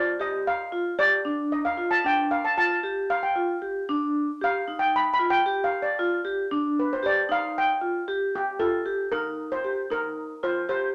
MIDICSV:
0, 0, Header, 1, 3, 480
1, 0, Start_track
1, 0, Tempo, 524476
1, 1156, Time_signature, 5, 2, 24, 8
1, 10021, End_track
2, 0, Start_track
2, 0, Title_t, "Steel pan"
2, 0, Program_c, 0, 114
2, 0, Note_on_c, 0, 74, 78
2, 177, Note_off_c, 0, 74, 0
2, 190, Note_on_c, 0, 75, 80
2, 434, Note_on_c, 0, 77, 86
2, 440, Note_off_c, 0, 75, 0
2, 904, Note_on_c, 0, 74, 96
2, 930, Note_off_c, 0, 77, 0
2, 1357, Note_off_c, 0, 74, 0
2, 1393, Note_on_c, 0, 75, 78
2, 1507, Note_off_c, 0, 75, 0
2, 1510, Note_on_c, 0, 77, 82
2, 1745, Note_on_c, 0, 81, 90
2, 1762, Note_off_c, 0, 77, 0
2, 1876, Note_off_c, 0, 81, 0
2, 1886, Note_on_c, 0, 79, 89
2, 2115, Note_on_c, 0, 77, 81
2, 2130, Note_off_c, 0, 79, 0
2, 2239, Note_on_c, 0, 81, 82
2, 2241, Note_off_c, 0, 77, 0
2, 2348, Note_off_c, 0, 81, 0
2, 2359, Note_on_c, 0, 81, 102
2, 2807, Note_off_c, 0, 81, 0
2, 2838, Note_on_c, 0, 77, 87
2, 2956, Note_on_c, 0, 79, 70
2, 2963, Note_off_c, 0, 77, 0
2, 3405, Note_off_c, 0, 79, 0
2, 4063, Note_on_c, 0, 77, 92
2, 4382, Note_off_c, 0, 77, 0
2, 4386, Note_on_c, 0, 79, 89
2, 4539, Note_off_c, 0, 79, 0
2, 4539, Note_on_c, 0, 83, 95
2, 4607, Note_off_c, 0, 83, 0
2, 4700, Note_on_c, 0, 83, 92
2, 4841, Note_off_c, 0, 83, 0
2, 4854, Note_on_c, 0, 79, 94
2, 5162, Note_on_c, 0, 77, 80
2, 5178, Note_off_c, 0, 79, 0
2, 5311, Note_off_c, 0, 77, 0
2, 5330, Note_on_c, 0, 74, 74
2, 5772, Note_off_c, 0, 74, 0
2, 6217, Note_on_c, 0, 71, 66
2, 6333, Note_off_c, 0, 71, 0
2, 6341, Note_on_c, 0, 72, 74
2, 6443, Note_off_c, 0, 72, 0
2, 6461, Note_on_c, 0, 74, 85
2, 6675, Note_off_c, 0, 74, 0
2, 6696, Note_on_c, 0, 77, 90
2, 6935, Note_off_c, 0, 77, 0
2, 6938, Note_on_c, 0, 79, 86
2, 7152, Note_off_c, 0, 79, 0
2, 7646, Note_on_c, 0, 67, 80
2, 7866, Note_on_c, 0, 69, 86
2, 7889, Note_off_c, 0, 67, 0
2, 8343, Note_on_c, 0, 70, 84
2, 8365, Note_off_c, 0, 69, 0
2, 8711, Note_on_c, 0, 72, 85
2, 8720, Note_off_c, 0, 70, 0
2, 9074, Note_on_c, 0, 70, 91
2, 9083, Note_off_c, 0, 72, 0
2, 9551, Note_on_c, 0, 72, 87
2, 9567, Note_off_c, 0, 70, 0
2, 9774, Note_off_c, 0, 72, 0
2, 9785, Note_on_c, 0, 72, 87
2, 10021, Note_off_c, 0, 72, 0
2, 10021, End_track
3, 0, Start_track
3, 0, Title_t, "Vibraphone"
3, 0, Program_c, 1, 11
3, 0, Note_on_c, 1, 65, 67
3, 132, Note_off_c, 1, 65, 0
3, 179, Note_on_c, 1, 67, 80
3, 553, Note_off_c, 1, 67, 0
3, 661, Note_on_c, 1, 65, 79
3, 850, Note_off_c, 1, 65, 0
3, 903, Note_on_c, 1, 67, 71
3, 1092, Note_off_c, 1, 67, 0
3, 1141, Note_on_c, 1, 62, 80
3, 1516, Note_off_c, 1, 62, 0
3, 1625, Note_on_c, 1, 65, 74
3, 1814, Note_off_c, 1, 65, 0
3, 1869, Note_on_c, 1, 62, 70
3, 2241, Note_off_c, 1, 62, 0
3, 2354, Note_on_c, 1, 65, 72
3, 2540, Note_off_c, 1, 65, 0
3, 2594, Note_on_c, 1, 67, 84
3, 2964, Note_off_c, 1, 67, 0
3, 3070, Note_on_c, 1, 65, 79
3, 3258, Note_off_c, 1, 65, 0
3, 3312, Note_on_c, 1, 67, 69
3, 3500, Note_off_c, 1, 67, 0
3, 3559, Note_on_c, 1, 62, 84
3, 3928, Note_off_c, 1, 62, 0
3, 4040, Note_on_c, 1, 67, 77
3, 4225, Note_off_c, 1, 67, 0
3, 4280, Note_on_c, 1, 63, 71
3, 4648, Note_off_c, 1, 63, 0
3, 4753, Note_on_c, 1, 65, 73
3, 4940, Note_off_c, 1, 65, 0
3, 4995, Note_on_c, 1, 67, 82
3, 5365, Note_off_c, 1, 67, 0
3, 5483, Note_on_c, 1, 65, 81
3, 5666, Note_off_c, 1, 65, 0
3, 5716, Note_on_c, 1, 67, 75
3, 5902, Note_off_c, 1, 67, 0
3, 5961, Note_on_c, 1, 62, 82
3, 6328, Note_off_c, 1, 62, 0
3, 6431, Note_on_c, 1, 67, 76
3, 6618, Note_off_c, 1, 67, 0
3, 6672, Note_on_c, 1, 63, 72
3, 7042, Note_off_c, 1, 63, 0
3, 7151, Note_on_c, 1, 65, 65
3, 7338, Note_off_c, 1, 65, 0
3, 7395, Note_on_c, 1, 67, 86
3, 7763, Note_off_c, 1, 67, 0
3, 7868, Note_on_c, 1, 65, 79
3, 8055, Note_off_c, 1, 65, 0
3, 8106, Note_on_c, 1, 67, 76
3, 8294, Note_off_c, 1, 67, 0
3, 8349, Note_on_c, 1, 63, 77
3, 8719, Note_off_c, 1, 63, 0
3, 8826, Note_on_c, 1, 67, 67
3, 9013, Note_off_c, 1, 67, 0
3, 9064, Note_on_c, 1, 63, 67
3, 9434, Note_off_c, 1, 63, 0
3, 9546, Note_on_c, 1, 65, 68
3, 9732, Note_off_c, 1, 65, 0
3, 9782, Note_on_c, 1, 67, 78
3, 10021, Note_off_c, 1, 67, 0
3, 10021, End_track
0, 0, End_of_file